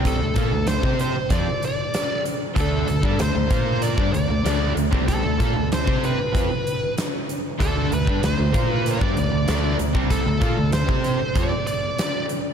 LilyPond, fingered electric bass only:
\new Staff \with { instrumentName = "Fingered electric bass" } { \clef bass \time 4/4 \key d \minor \tempo 4 = 96 c,16 d,16 bes,16 d,8 c8 r16 f,16 r4. r16 | d,8 d,16 g,16 d,16 d,16 bes,8. g,16 d,16 d,16 d,8 d,16 c,16~ | c,16 d,16 bes,16 d,8 c8 r16 f,16 r4. r16 | d,8 d,16 g,16 d,16 d,16 bes,8. g,16 d,16 d,16 d,8 d,16 c,16~ |
c,16 d,16 bes,16 d,8 c8 r16 f,16 r4. r16 | }